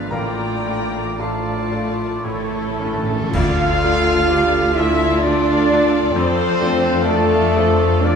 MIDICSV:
0, 0, Header, 1, 14, 480
1, 0, Start_track
1, 0, Key_signature, -1, "minor"
1, 0, Tempo, 1075269
1, 51, Time_signature, 3, 2, 24, 8
1, 1488, Tempo, 960000
1, 1968, Tempo, 925926
1, 3408, Tempo, 966184
1, 3946, End_track
2, 0, Start_track
2, 0, Title_t, "Violin section"
2, 0, Program_c, 0, 48
2, 0, Note_on_c, 0, 77, 73
2, 52, Note_on_c, 0, 82, 81
2, 55, Note_off_c, 0, 77, 0
2, 524, Note_off_c, 0, 82, 0
2, 539, Note_on_c, 0, 81, 60
2, 995, Note_on_c, 0, 69, 78
2, 1004, Note_off_c, 0, 81, 0
2, 1467, Note_off_c, 0, 69, 0
2, 1481, Note_on_c, 0, 77, 105
2, 2206, Note_off_c, 0, 77, 0
2, 2210, Note_on_c, 0, 76, 98
2, 2450, Note_off_c, 0, 76, 0
2, 2450, Note_on_c, 0, 74, 91
2, 2927, Note_off_c, 0, 74, 0
2, 2935, Note_on_c, 0, 72, 111
2, 3401, Note_on_c, 0, 69, 93
2, 3411, Note_off_c, 0, 72, 0
2, 3875, Note_off_c, 0, 69, 0
2, 3887, Note_on_c, 0, 74, 104
2, 3946, Note_off_c, 0, 74, 0
2, 3946, End_track
3, 0, Start_track
3, 0, Title_t, "Flute section"
3, 0, Program_c, 1, 73
3, 0, Note_on_c, 1, 74, 77
3, 42, Note_on_c, 1, 79, 79
3, 48, Note_off_c, 1, 74, 0
3, 518, Note_off_c, 1, 79, 0
3, 529, Note_on_c, 1, 77, 58
3, 894, Note_off_c, 1, 77, 0
3, 1001, Note_on_c, 1, 69, 80
3, 1469, Note_off_c, 1, 69, 0
3, 1487, Note_on_c, 1, 77, 105
3, 2205, Note_on_c, 1, 76, 101
3, 2209, Note_off_c, 1, 77, 0
3, 2442, Note_on_c, 1, 74, 101
3, 2447, Note_off_c, 1, 76, 0
3, 2920, Note_on_c, 1, 72, 99
3, 2923, Note_off_c, 1, 74, 0
3, 3394, Note_off_c, 1, 72, 0
3, 3403, Note_on_c, 1, 69, 91
3, 3885, Note_on_c, 1, 74, 95
3, 3886, Note_off_c, 1, 69, 0
3, 3946, Note_off_c, 1, 74, 0
3, 3946, End_track
4, 0, Start_track
4, 0, Title_t, "Trumpet section"
4, 0, Program_c, 2, 61
4, 50, Note_on_c, 2, 74, 64
4, 523, Note_off_c, 2, 74, 0
4, 533, Note_on_c, 2, 74, 55
4, 992, Note_off_c, 2, 74, 0
4, 1002, Note_on_c, 2, 69, 80
4, 1003, Note_on_c, 2, 73, 57
4, 1329, Note_off_c, 2, 73, 0
4, 1470, Note_off_c, 2, 69, 0
4, 1491, Note_on_c, 2, 77, 117
4, 2211, Note_off_c, 2, 77, 0
4, 2214, Note_on_c, 2, 76, 96
4, 2452, Note_off_c, 2, 76, 0
4, 2454, Note_on_c, 2, 74, 93
4, 2929, Note_off_c, 2, 74, 0
4, 2933, Note_on_c, 2, 72, 110
4, 3401, Note_off_c, 2, 72, 0
4, 3412, Note_on_c, 2, 69, 102
4, 3890, Note_off_c, 2, 69, 0
4, 3896, Note_on_c, 2, 74, 105
4, 3946, Note_off_c, 2, 74, 0
4, 3946, End_track
5, 0, Start_track
5, 0, Title_t, "Viola section"
5, 0, Program_c, 3, 48
5, 0, Note_on_c, 3, 59, 56
5, 44, Note_on_c, 3, 65, 54
5, 45, Note_on_c, 3, 57, 60
5, 50, Note_off_c, 3, 59, 0
5, 520, Note_off_c, 3, 57, 0
5, 520, Note_off_c, 3, 65, 0
5, 526, Note_on_c, 3, 57, 54
5, 527, Note_on_c, 3, 65, 56
5, 988, Note_off_c, 3, 57, 0
5, 989, Note_off_c, 3, 65, 0
5, 997, Note_on_c, 3, 57, 55
5, 999, Note_on_c, 3, 64, 59
5, 1379, Note_off_c, 3, 57, 0
5, 1388, Note_off_c, 3, 64, 0
5, 1490, Note_on_c, 3, 74, 88
5, 1494, Note_on_c, 3, 69, 86
5, 1603, Note_off_c, 3, 74, 0
5, 1611, Note_on_c, 3, 77, 74
5, 1731, Note_off_c, 3, 77, 0
5, 1736, Note_on_c, 3, 74, 77
5, 1849, Note_on_c, 3, 77, 76
5, 1852, Note_off_c, 3, 74, 0
5, 1967, Note_off_c, 3, 77, 0
5, 1967, Note_on_c, 3, 74, 80
5, 2088, Note_off_c, 3, 74, 0
5, 2094, Note_on_c, 3, 77, 77
5, 2207, Note_on_c, 3, 74, 77
5, 2212, Note_off_c, 3, 77, 0
5, 2328, Note_off_c, 3, 74, 0
5, 2329, Note_on_c, 3, 77, 76
5, 2448, Note_on_c, 3, 74, 69
5, 2449, Note_off_c, 3, 77, 0
5, 2569, Note_off_c, 3, 74, 0
5, 2569, Note_on_c, 3, 77, 76
5, 2689, Note_off_c, 3, 77, 0
5, 2689, Note_on_c, 3, 74, 83
5, 2805, Note_on_c, 3, 77, 73
5, 2808, Note_off_c, 3, 74, 0
5, 2920, Note_on_c, 3, 74, 84
5, 2925, Note_off_c, 3, 77, 0
5, 3034, Note_off_c, 3, 74, 0
5, 3037, Note_on_c, 3, 77, 73
5, 3162, Note_off_c, 3, 77, 0
5, 3162, Note_on_c, 3, 74, 81
5, 3282, Note_on_c, 3, 77, 83
5, 3284, Note_off_c, 3, 74, 0
5, 3402, Note_on_c, 3, 74, 74
5, 3405, Note_off_c, 3, 77, 0
5, 3520, Note_on_c, 3, 77, 82
5, 3522, Note_off_c, 3, 74, 0
5, 3644, Note_off_c, 3, 77, 0
5, 3644, Note_on_c, 3, 74, 77
5, 3764, Note_on_c, 3, 77, 70
5, 3767, Note_off_c, 3, 74, 0
5, 3880, Note_on_c, 3, 74, 77
5, 3886, Note_off_c, 3, 77, 0
5, 3946, Note_off_c, 3, 69, 0
5, 3946, Note_off_c, 3, 74, 0
5, 3946, End_track
6, 0, Start_track
6, 0, Title_t, "Violin section"
6, 0, Program_c, 4, 48
6, 0, Note_on_c, 4, 74, 58
6, 48, Note_off_c, 4, 74, 0
6, 53, Note_on_c, 4, 74, 67
6, 524, Note_off_c, 4, 74, 0
6, 529, Note_on_c, 4, 74, 63
6, 990, Note_off_c, 4, 74, 0
6, 1000, Note_on_c, 4, 73, 58
6, 1389, Note_off_c, 4, 73, 0
6, 1491, Note_on_c, 4, 74, 95
6, 3946, Note_off_c, 4, 74, 0
6, 3946, End_track
7, 0, Start_track
7, 0, Title_t, "Oboe"
7, 0, Program_c, 5, 68
7, 0, Note_on_c, 5, 71, 68
7, 54, Note_off_c, 5, 71, 0
7, 66, Note_on_c, 5, 74, 52
7, 531, Note_off_c, 5, 74, 0
7, 542, Note_on_c, 5, 74, 69
7, 1002, Note_on_c, 5, 73, 61
7, 1008, Note_off_c, 5, 74, 0
7, 1328, Note_off_c, 5, 73, 0
7, 3946, End_track
8, 0, Start_track
8, 0, Title_t, "Clarinet"
8, 0, Program_c, 6, 71
8, 0, Note_on_c, 6, 62, 59
8, 47, Note_off_c, 6, 62, 0
8, 50, Note_on_c, 6, 65, 62
8, 522, Note_off_c, 6, 65, 0
8, 535, Note_on_c, 6, 65, 80
8, 1008, Note_on_c, 6, 64, 73
8, 1014, Note_off_c, 6, 65, 0
8, 1248, Note_off_c, 6, 64, 0
8, 1250, Note_on_c, 6, 62, 65
8, 1423, Note_off_c, 6, 62, 0
8, 1493, Note_on_c, 6, 69, 104
8, 1970, Note_on_c, 6, 67, 91
8, 1978, Note_off_c, 6, 69, 0
8, 2224, Note_on_c, 6, 65, 109
8, 2232, Note_off_c, 6, 67, 0
8, 2931, Note_off_c, 6, 65, 0
8, 2934, Note_on_c, 6, 69, 98
8, 3422, Note_on_c, 6, 74, 106
8, 3430, Note_off_c, 6, 69, 0
8, 3662, Note_on_c, 6, 72, 105
8, 3669, Note_off_c, 6, 74, 0
8, 3893, Note_off_c, 6, 72, 0
8, 3896, Note_on_c, 6, 70, 85
8, 3946, Note_off_c, 6, 70, 0
8, 3946, End_track
9, 0, Start_track
9, 0, Title_t, "French horn section"
9, 0, Program_c, 7, 60
9, 46, Note_on_c, 7, 53, 64
9, 46, Note_on_c, 7, 62, 59
9, 521, Note_off_c, 7, 62, 0
9, 526, Note_off_c, 7, 53, 0
9, 532, Note_on_c, 7, 53, 74
9, 532, Note_on_c, 7, 62, 67
9, 985, Note_on_c, 7, 52, 61
9, 985, Note_on_c, 7, 64, 59
9, 986, Note_on_c, 7, 57, 100
9, 991, Note_off_c, 7, 53, 0
9, 991, Note_off_c, 7, 62, 0
9, 1313, Note_off_c, 7, 64, 0
9, 1320, Note_off_c, 7, 52, 0
9, 1462, Note_off_c, 7, 57, 0
9, 1475, Note_on_c, 7, 65, 120
9, 2197, Note_on_c, 7, 64, 113
9, 2202, Note_off_c, 7, 65, 0
9, 2436, Note_on_c, 7, 62, 124
9, 2444, Note_off_c, 7, 64, 0
9, 2911, Note_off_c, 7, 62, 0
9, 2917, Note_on_c, 7, 60, 117
9, 3388, Note_on_c, 7, 57, 127
9, 3402, Note_off_c, 7, 60, 0
9, 3879, Note_off_c, 7, 57, 0
9, 3881, Note_on_c, 7, 62, 115
9, 3946, Note_off_c, 7, 62, 0
9, 3946, End_track
10, 0, Start_track
10, 0, Title_t, "Grand piano"
10, 0, Program_c, 8, 0
10, 0, Control_c, 8, 64, 127
10, 0, Note_on_c, 8, 44, 74
10, 0, Note_on_c, 8, 59, 48
10, 0, Note_on_c, 8, 62, 51
10, 0, Note_on_c, 8, 65, 53
10, 0, Note_on_c, 8, 74, 52
10, 0, Note_on_c, 8, 77, 67
10, 48, Note_on_c, 8, 45, 65
10, 48, Note_on_c, 8, 82, 82
10, 53, Note_on_c, 8, 70, 74
10, 55, Note_off_c, 8, 77, 0
10, 55, Note_on_c, 8, 77, 69
10, 60, Control_c, 8, 64, 0
10, 62, Note_off_c, 8, 62, 0
10, 63, Note_off_c, 8, 59, 0
10, 64, Note_off_c, 8, 65, 0
10, 64, Note_off_c, 8, 74, 0
10, 65, Note_off_c, 8, 44, 0
10, 155, Control_c, 8, 64, 127
10, 289, Note_off_c, 8, 45, 0
10, 299, Note_on_c, 8, 57, 47
10, 300, Note_on_c, 8, 62, 50
10, 302, Note_on_c, 8, 65, 51
10, 513, Note_off_c, 8, 82, 0
10, 516, Note_off_c, 8, 57, 0
10, 516, Note_off_c, 8, 62, 0
10, 516, Note_off_c, 8, 70, 0
10, 517, Note_off_c, 8, 65, 0
10, 517, Note_off_c, 8, 77, 0
10, 530, Note_on_c, 8, 57, 46
10, 532, Note_on_c, 8, 62, 47
10, 536, Note_on_c, 8, 65, 51
10, 540, Note_on_c, 8, 81, 63
10, 548, Note_on_c, 8, 69, 49
10, 549, Note_on_c, 8, 77, 49
10, 747, Note_off_c, 8, 57, 0
10, 748, Note_off_c, 8, 62, 0
10, 750, Note_off_c, 8, 65, 0
10, 769, Note_on_c, 8, 65, 58
10, 770, Note_on_c, 8, 57, 53
10, 770, Note_on_c, 8, 62, 52
10, 985, Note_off_c, 8, 57, 0
10, 985, Note_off_c, 8, 62, 0
10, 985, Note_off_c, 8, 65, 0
10, 1002, Note_on_c, 8, 45, 72
10, 1010, Control_c, 8, 64, 0
10, 1086, Control_c, 8, 64, 127
10, 1234, Note_off_c, 8, 81, 0
10, 1238, Note_off_c, 8, 69, 0
10, 1238, Note_off_c, 8, 77, 0
10, 1241, Note_off_c, 8, 45, 0
10, 1249, Note_on_c, 8, 57, 47
10, 1250, Note_on_c, 8, 61, 50
10, 1252, Note_on_c, 8, 64, 51
10, 1470, Note_off_c, 8, 57, 0
10, 1471, Note_off_c, 8, 61, 0
10, 1471, Note_off_c, 8, 64, 0
10, 1494, Note_on_c, 8, 38, 94
10, 1497, Control_c, 8, 64, 0
10, 1598, Control_c, 8, 64, 127
10, 1727, Note_off_c, 8, 38, 0
10, 1741, Note_on_c, 8, 57, 67
10, 1744, Note_on_c, 8, 65, 70
10, 1745, Note_on_c, 8, 62, 65
10, 1952, Note_off_c, 8, 57, 0
10, 1954, Note_off_c, 8, 62, 0
10, 1954, Note_off_c, 8, 65, 0
10, 1981, Note_on_c, 8, 57, 66
10, 1983, Note_on_c, 8, 65, 80
10, 1984, Note_on_c, 8, 62, 64
10, 2196, Note_off_c, 8, 57, 0
10, 2197, Note_off_c, 8, 62, 0
10, 2197, Note_off_c, 8, 65, 0
10, 2225, Note_on_c, 8, 57, 67
10, 2228, Note_on_c, 8, 62, 72
10, 2230, Note_on_c, 8, 65, 81
10, 2437, Note_off_c, 8, 57, 0
10, 2438, Note_off_c, 8, 62, 0
10, 2439, Note_off_c, 8, 65, 0
10, 2473, Note_on_c, 8, 62, 70
10, 2474, Note_on_c, 8, 57, 74
10, 2474, Note_on_c, 8, 65, 80
10, 2679, Note_off_c, 8, 62, 0
10, 2680, Note_off_c, 8, 57, 0
10, 2680, Note_off_c, 8, 65, 0
10, 2708, Note_on_c, 8, 57, 67
10, 2711, Note_on_c, 8, 62, 70
10, 2712, Note_on_c, 8, 65, 72
10, 2916, Note_off_c, 8, 57, 0
10, 2918, Note_off_c, 8, 62, 0
10, 2918, Note_off_c, 8, 65, 0
10, 2935, Note_on_c, 8, 41, 106
10, 2936, Control_c, 8, 64, 0
10, 3013, Control_c, 8, 64, 127
10, 3163, Note_off_c, 8, 41, 0
10, 3169, Note_on_c, 8, 57, 62
10, 3172, Note_on_c, 8, 62, 67
10, 3177, Note_on_c, 8, 65, 71
10, 3388, Note_off_c, 8, 57, 0
10, 3389, Note_off_c, 8, 62, 0
10, 3392, Note_off_c, 8, 65, 0
10, 3414, Note_on_c, 8, 57, 72
10, 3417, Note_on_c, 8, 62, 66
10, 3422, Note_on_c, 8, 65, 74
10, 3630, Note_off_c, 8, 57, 0
10, 3631, Note_off_c, 8, 62, 0
10, 3633, Note_off_c, 8, 65, 0
10, 3653, Note_on_c, 8, 57, 79
10, 3655, Note_on_c, 8, 62, 81
10, 3658, Note_on_c, 8, 65, 79
10, 3872, Note_off_c, 8, 57, 0
10, 3872, Note_off_c, 8, 62, 0
10, 3874, Note_off_c, 8, 65, 0
10, 3886, Note_on_c, 8, 62, 75
10, 3887, Note_on_c, 8, 57, 74
10, 3891, Note_on_c, 8, 65, 76
10, 3946, Note_off_c, 8, 57, 0
10, 3946, Note_off_c, 8, 62, 0
10, 3946, Note_off_c, 8, 65, 0
10, 3946, End_track
11, 0, Start_track
11, 0, Title_t, "Cello section"
11, 0, Program_c, 10, 48
11, 0, Note_on_c, 10, 53, 81
11, 55, Note_off_c, 10, 53, 0
11, 57, Note_on_c, 10, 58, 67
11, 526, Note_off_c, 10, 58, 0
11, 536, Note_on_c, 10, 57, 63
11, 1003, Note_off_c, 10, 57, 0
11, 1007, Note_on_c, 10, 57, 82
11, 1473, Note_off_c, 10, 57, 0
11, 1495, Note_on_c, 10, 65, 102
11, 2213, Note_off_c, 10, 65, 0
11, 2214, Note_on_c, 10, 64, 104
11, 2452, Note_off_c, 10, 64, 0
11, 2456, Note_on_c, 10, 62, 109
11, 2930, Note_off_c, 10, 62, 0
11, 2934, Note_on_c, 10, 60, 95
11, 3411, Note_off_c, 10, 60, 0
11, 3413, Note_on_c, 10, 57, 93
11, 3881, Note_off_c, 10, 57, 0
11, 3898, Note_on_c, 10, 62, 110
11, 3946, Note_off_c, 10, 62, 0
11, 3946, End_track
12, 0, Start_track
12, 0, Title_t, "Timpani"
12, 0, Program_c, 11, 47
12, 48, Note_on_c, 11, 45, 83
12, 746, Note_off_c, 11, 45, 0
12, 998, Note_on_c, 11, 45, 35
12, 1030, Note_off_c, 11, 45, 0
12, 1035, Note_on_c, 11, 45, 38
12, 1067, Note_off_c, 11, 45, 0
12, 1116, Note_on_c, 11, 45, 50
12, 1148, Note_off_c, 11, 45, 0
12, 1154, Note_on_c, 11, 45, 44
12, 1191, Note_off_c, 11, 45, 0
12, 1196, Note_on_c, 11, 45, 53
12, 1232, Note_off_c, 11, 45, 0
12, 1237, Note_on_c, 11, 45, 54
12, 1274, Note_off_c, 11, 45, 0
12, 1279, Note_on_c, 11, 45, 69
12, 1314, Note_off_c, 11, 45, 0
12, 1319, Note_on_c, 11, 45, 79
12, 1350, Note_off_c, 11, 45, 0
12, 1355, Note_on_c, 11, 45, 88
12, 1392, Note_off_c, 11, 45, 0
12, 1397, Note_on_c, 11, 45, 82
12, 1428, Note_off_c, 11, 45, 0
12, 1434, Note_on_c, 11, 45, 94
12, 1467, Note_off_c, 11, 45, 0
12, 3946, End_track
13, 0, Start_track
13, 0, Title_t, "Double bass section"
13, 0, Program_c, 12, 48
13, 45, Note_on_c, 12, 33, 67
13, 995, Note_off_c, 12, 33, 0
13, 1001, Note_on_c, 12, 33, 57
13, 1381, Note_off_c, 12, 33, 0
13, 1481, Note_on_c, 12, 38, 98
13, 2902, Note_off_c, 12, 38, 0
13, 2924, Note_on_c, 12, 41, 100
13, 3946, Note_off_c, 12, 41, 0
13, 3946, End_track
14, 0, Start_track
14, 0, Title_t, "Drums"
14, 1488, Note_on_c, 9, 35, 88
14, 1488, Note_on_c, 9, 49, 74
14, 1538, Note_off_c, 9, 35, 0
14, 1538, Note_off_c, 9, 49, 0
14, 3946, End_track
0, 0, End_of_file